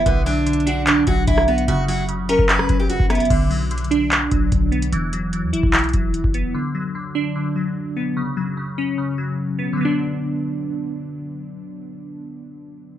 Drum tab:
CC |------------------------------------------------------------------------------------------------|------------------------------------------------------------------------------------------------|x-----------------------------------------------------------------------------------------------|------------------------------------------------------------------------------------------------|
HH |x-----------o-----------x---x---x---x-----------x-----------x-----------x-----------x-----x-----|x-----------o-----------x-----------x-----------x-----------x-----------x-----------x--x--x--x--|x-----------o-----------x---x---x---x-----------x-----------x-----------x-----------x-----x-----|x-----------x-----------x-----------x-----------x--x--x--x--x-----------x-----------x-----------|
CP |------------------------------------------------x-----------------------------------------------|------------------------------------------------x-----------------------------------------------|------------------------------------------------x-----------------------------------------------|------------------------------------------------x-----------------------------------------------|
SD |------------------------------------------------------------------------------r-----------------|------------------------------------------------------r-----------------------------r-----------|------------------------------------------------------------------------------------------------|------------------------------------------------------------------------------------------------|
BD |o-----------------------------------------------------------o-----------o-----------------------|------------------------------------------o-----------------o-----------------o-----------------|o-----------------------------------------------------------o-----------o-----------------------|------------------------------------------o-----------------o-----------------o-----------------|

CC |------------------------------------------------------------------------------------------------|------------------------------------------------------------------------------------------------|------------------------------------------------------------------------------------------------|------------------------------------------------------------------------------------------------|
HH |------------------------------------------------------------------------------------------------|------------------------------------------------------------------------------------------------|------------------------------------------------------------------------------------------------|------------------------------------------------------------------------------------------------|
CP |------------------------------------------------------------------------------------------------|------------------------------------------------------------------------------------------------|------------------------------------------------------------------------------------------------|------------------------------------------------------------------------------------------------|
SD |------------------------------------------------------------------------------------------------|------------------------------------------------------------------------------------------------|------------------------------------------------------------------------------------------------|------------------------------------------------------------------------------------------------|
BD |------------------------------------------------------------------------------------------------|------------------------------------------------------------------------------------------------|------------------------------------------------------------------------------------------------|------------------------------------------------------------------------------------------------|